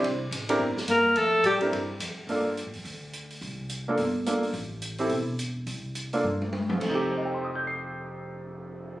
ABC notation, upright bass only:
X:1
M:4/4
L:1/8
Q:"Swing" 1/4=213
K:Fmix
V:1 name="Upright bass" clef=bass
C,,2 A,,,2 G,,,2 G,,2 | F,,2 A,,2 G,,2 F,, z | G,,2- (3G,, A,, F,, D,,4 | C,,4 G,,,4 |
A,,,4 =E,,,4 | C,,4 G,,3 _G,, | F,,,8- | F,,,8 |]